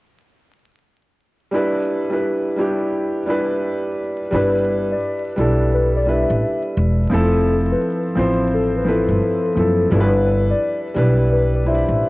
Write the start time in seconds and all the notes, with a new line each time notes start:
1.51 G3 D4 E4 B4
2.10 G3 D4 E4 B4
2.56 G3 D4 E4 G4
3.26 G3 D4 E4 B4
4.31 G1 G3 D4 E4 B4
4.35 B4
4.92 D5
5.36 B1 G3 D4 E4
5.40 A4
5.74 B4
5.97 D5
6.05 G3 D4 E4 B4
6.09 E5
6.30 A1
6.77 E1
7.10 F1 F3 C4 E4 A4
7.14 A4
7.72 B4
8.15 A1 F3 C4 E4 C5
8.54 A4
8.77 B4
8.85 F3 C4 E4 B4
8.89 A4
9.09 G1
9.55 F#1 F3 C4 E4 A4
9.91 G1 G3 D4 E4 A4 B4
10.00 B4
10.50 D5
10.94 B1 G3 D4 E4 B4
11.32 B4
11.55 D5
11.64 G3 D4 E4 C5 E5
11.74 D5
11.88 A1